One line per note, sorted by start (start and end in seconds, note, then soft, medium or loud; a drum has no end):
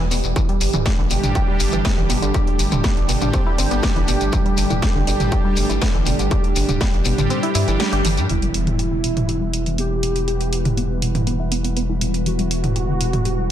0.00 0.32 E3 medium
0.00 8.26 G3 medium
0.00 0.32 B3 medium
0.00 8.26 G4 medium
0.11 0.21 E1 loud
0.11 0.19 B2 medium
0.11 open hi-hat medium
0.11 shekere loud
0.23 0.33 E1 medium
0.23 shekere medium
0.36 8.25 D3 medium
0.36 0.48 E3 medium
0.36 8.25 A3 medium
0.36 kick loud
0.36 closed hi-hat soft
0.36 shekere soft
0.49 0.60 G3 medium
0.49 closed hi-hat soft
0.61 0.70 G1 medium
0.61 open hi-hat loud
0.61 shekere medium
0.73 0.82 D1 medium
0.73 0.81 E3 medium
0.73 closed hi-hat soft
0.73 mid tom medium
0.73 shekere medium
0.86 0.90 G4 medium
0.86 kick loud
0.86 snare loud
0.86 closed hi-hat soft
0.86 shekere soft
0.98 1.07 G1 medium
0.98 1.06 D3 medium
1.10 1.20 G1 loud
1.10 1.18 B2 medium
1.10 1.32 G3 medium
1.10 1.32 D4 medium
1.10 1.32 G4 loud
1.10 open hi-hat medium
1.10 shekere medium
1.23 1.32 G1 medium
1.23 closed hi-hat soft
1.23 mid tom medium
1.23 shekere medium
1.35 3.06 G3 medium
1.35 3.06 D4 medium
1.35 1.47 G4 medium
1.35 3.06 G4 medium
1.35 kick loud
1.35 closed hi-hat soft
1.35 shekere soft
1.48 1.59 G3 medium
1.59 1.69 G1 medium
1.59 open hi-hat loud
1.59 shekere medium
1.72 1.82 G1 medium
1.72 1.80 E3 medium
1.72 closed hi-hat soft
1.72 shekere medium
1.85 1.90 B3 medium
1.85 kick loud
1.85 snare loud
1.85 closed hi-hat soft
1.85 shekere soft
1.97 2.06 G1 medium
1.97 2.09 E3 medium
2.09 2.19 G1 medium
2.09 2.18 B2 medium
2.09 open hi-hat medium
2.09 shekere medium
2.22 2.31 G1 medium
2.22 2.34 D3 medium
2.22 closed hi-hat soft
2.22 shekere soft
2.34 2.46 G4 medium
2.34 kick loud
2.34 closed hi-hat soft
2.34 shekere soft
2.47 closed hi-hat soft
2.59 2.69 G1 medium
2.59 open hi-hat loud
2.59 shekere medium
2.71 2.81 D1 medium
2.71 2.83 D3 medium
2.71 closed hi-hat soft
2.71 mid tom medium
2.71 shekere medium
2.84 2.89 B3 medium
2.84 kick loud
2.84 snare loud
2.84 closed hi-hat soft
2.84 shekere soft
2.97 3.06 G1 medium
2.97 closed hi-hat soft
3.09 3.18 G1 loud
3.09 3.17 B2 medium
3.09 3.56 G3 medium
3.09 3.55 D4 medium
3.09 3.55 G4 medium
3.09 open hi-hat medium
3.09 shekere medium
3.21 3.30 G1 medium
3.21 3.33 D3 medium
3.21 closed hi-hat soft
3.21 mid tom medium
3.21 shekere soft
3.33 3.42 C4 medium
3.33 kick loud
3.33 closed hi-hat soft
3.33 shekere soft
3.46 3.54 E4 medium
3.58 3.68 G1 medium
3.58 5.04 G3 medium
3.58 3.66 C4 medium
3.58 5.04 D4 medium
3.58 5.04 G4 loud
3.58 open hi-hat loud
3.58 shekere medium
3.71 3.80 G1 medium
3.71 3.76 B3 medium
3.71 closed hi-hat soft
3.71 shekere medium
3.83 3.88 B3 medium
3.83 kick loud
3.83 snare loud
3.83 closed hi-hat soft
3.83 shekere soft
3.96 4.05 G1 medium
3.96 4.00 E3 loud
3.96 closed hi-hat soft
4.08 4.17 G1 medium
4.08 4.16 B2 medium
4.08 open hi-hat medium
4.08 shekere medium
4.20 4.30 G1 medium
4.20 closed hi-hat soft
4.20 shekere soft
4.32 4.45 E3 medium
4.32 kick loud
4.32 closed hi-hat soft
4.32 shekere soft
4.45 4.57 G3 medium
4.45 closed hi-hat soft
4.57 4.67 G1 medium
4.57 open hi-hat loud
4.57 shekere medium
4.70 4.79 D1 medium
4.70 4.78 E3 medium
4.70 closed hi-hat soft
4.70 mid tom medium
4.70 shekere soft
4.82 4.87 G4 medium
4.82 kick loud
4.82 snare loud
4.82 closed hi-hat soft
4.82 shekere soft
4.95 5.04 G1 medium
4.95 5.03 D3 medium
5.07 5.17 G1 loud
5.07 5.15 B2 medium
5.07 5.29 G3 loud
5.07 5.29 D4 medium
5.07 5.29 G4 loud
5.07 open hi-hat medium
5.07 shekere medium
5.20 5.29 G1 medium
5.20 closed hi-hat soft
5.20 mid tom medium
5.20 shekere soft
5.31 7.03 G3 medium
5.31 7.03 D4 medium
5.31 7.03 G4 medium
5.31 5.44 G4 medium
5.31 kick loud
5.31 closed hi-hat soft
5.31 shekere soft
5.45 5.56 G3 medium
5.56 5.66 G1 medium
5.56 open hi-hat loud
5.56 shekere medium
5.69 5.78 G1 medium
5.69 5.77 E3 medium
5.69 closed hi-hat soft
5.69 shekere soft
5.81 5.86 B3 medium
5.81 kick loud
5.81 snare loud
5.81 closed hi-hat soft
5.81 shekere soft
5.94 6.03 G1 medium
5.94 6.06 E3 medium
6.06 6.16 G1 loud
6.06 6.14 B2 medium
6.06 open hi-hat medium
6.06 shekere medium
6.19 6.28 G1 medium
6.19 6.30 D3 medium
6.19 closed hi-hat soft
6.19 shekere soft
6.31 6.43 G4 medium
6.31 kick loud
6.31 closed hi-hat soft
6.31 shekere soft
6.44 closed hi-hat soft
6.56 6.65 G1 medium
6.56 open hi-hat loud
6.56 shekere medium
6.69 6.78 D1 medium
6.69 6.80 D3 medium
6.69 closed hi-hat soft
6.69 mid tom medium
6.69 shekere soft
6.81 6.86 B3 medium
6.81 kick loud
6.81 snare loud
6.81 closed hi-hat soft
6.81 shekere soft
6.93 7.02 G1 medium
6.93 closed hi-hat soft
7.05 7.15 G1 loud
7.05 7.14 B2 medium
7.05 7.52 G3 medium
7.05 7.52 D4 medium
7.05 7.52 G4 medium
7.05 open hi-hat medium
7.05 shekere medium
7.18 7.27 G1 medium
7.18 7.30 D3 medium
7.18 closed hi-hat soft
7.18 mid tom medium
7.18 shekere medium
7.30 7.38 C4 medium
7.30 closed hi-hat soft
7.30 shekere soft
7.43 7.51 E4 medium
7.43 closed hi-hat soft
7.55 7.64 G2 medium
7.55 8.28 G3 medium
7.55 8.28 D4 medium
7.55 7.67 E4 medium
7.55 8.28 G4 loud
7.55 open hi-hat loud
7.55 shekere medium
7.68 7.77 G1 medium
7.68 7.79 E3 medium
7.68 closed hi-hat soft
7.68 shekere medium
7.80 7.88 G3 medium
7.80 snare loud
7.80 closed hi-hat soft
7.80 shekere soft
7.93 8.02 G1 medium
7.93 8.04 G4 medium
7.93 closed hi-hat soft
8.05 8.19 G1 medium
8.05 8.13 E3 medium
8.05 open hi-hat medium
8.05 shekere medium
8.17 8.26 G2 medium
8.17 closed hi-hat soft
8.17 shekere medium
8.29 13.52 E1 medium
8.29 12.23 E3 medium
8.29 8.42 E3 medium
8.29 13.52 G3 medium
8.29 12.23 B3 medium
8.29 9.68 E4 loud
8.29 12.23 E4 medium
8.29 13.52 E4 medium
8.29 13.52 B4 medium
8.29 13.52 F#5 medium
8.29 closed hi-hat soft
8.29 impact medium
8.42 8.54 G3 medium
8.42 closed hi-hat soft
8.54 closed hi-hat medium
8.67 8.75 E3 medium
8.67 closed hi-hat soft
8.67 mid tom medium
8.79 8.84 G4 medium
8.79 closed hi-hat soft
8.92 8.99 D3 medium
9.04 9.12 B2 medium
9.04 closed hi-hat medium
9.17 closed hi-hat soft
9.17 mid tom medium
9.29 9.41 G4 medium
9.29 closed hi-hat soft
9.41 9.53 G3 medium
9.54 closed hi-hat medium
9.66 9.74 E3 medium
9.66 closed hi-hat soft
9.78 9.83 B3 medium
9.78 11.17 G4 loud
9.78 closed hi-hat soft
9.91 10.02 E3 medium
10.03 10.11 B2 medium
10.03 closed hi-hat medium
10.16 10.27 D3 medium
10.16 closed hi-hat soft
10.28 10.40 G4 medium
10.28 closed hi-hat soft
10.41 closed hi-hat soft
10.53 closed hi-hat medium
10.65 10.77 D3 medium
10.65 closed hi-hat soft
10.65 mid tom medium
10.77 10.82 B3 medium
10.77 closed hi-hat soft
11.02 11.10 B2 medium
11.02 closed hi-hat medium
11.15 11.26 D3 medium
11.15 closed hi-hat soft
11.15 mid tom medium
11.27 11.35 B3 medium
11.27 closed hi-hat soft
11.40 11.47 E4 medium
11.52 11.60 B3 medium
11.52 closed hi-hat medium
11.64 11.69 B3 medium
11.64 closed hi-hat soft
11.77 11.81 B3 medium
11.77 closed hi-hat soft
11.89 11.94 E3 loud
12.01 12.09 B2 medium
12.01 closed hi-hat medium
12.14 closed hi-hat soft
12.26 12.38 E3 medium
12.26 13.52 E3 medium
12.26 13.52 B3 medium
12.26 13.52 E4 medium
12.26 13.52 F#4 loud
12.26 closed hi-hat soft
12.39 12.50 G3 medium
12.39 closed hi-hat soft
12.51 closed hi-hat medium
12.64 12.71 E3 medium
12.64 closed hi-hat soft
12.64 mid tom medium
12.76 12.81 G4 medium
12.76 closed hi-hat soft
12.88 12.96 D3 medium
13.00 13.09 B2 medium
13.00 closed hi-hat medium
13.13 closed hi-hat soft
13.13 mid tom medium
13.25 13.37 G4 medium
13.25 closed hi-hat soft
13.38 13.49 G3 medium